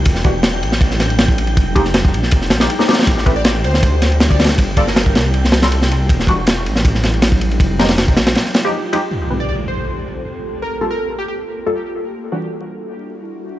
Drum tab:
RD |x---x---x---x---x---x-x-x---x-x-|x---x---x---x---x---x-x-x---xxxx|x---x---x---x---x---x-x-x---xxx-|x---x---x---x---x---x-x-x---x---|
SD |--o-----o-----o---o-o---o-------|------o-o-----o---o-o-o---o-oooo|--o-----o-----o-----o---o---ooo-|------o-o---o-----o-o-o---o-----|
BD |o---o-----------o---------o-----|o---o-----o-----o---------------|o---o-----------o---------o-----|o---o-----o---------------------|

RD |x---x---x---x---x---x-x-x---x-x-|x---xxx-x---x-x-x---x-------x---|--------------------------------|--------------------------------|
SD |--o-----o-----o---o-o---o-------|----ooo-o---o-o-o-o-o-----------|--------------------------------|--------------------------------|
BD |o---o-----------o---------o-----|o---------o---------------------|--------------------------------|--------------------------------|

RD |--------------------------------|
SD |--------------------------------|
BD |--------------------------------|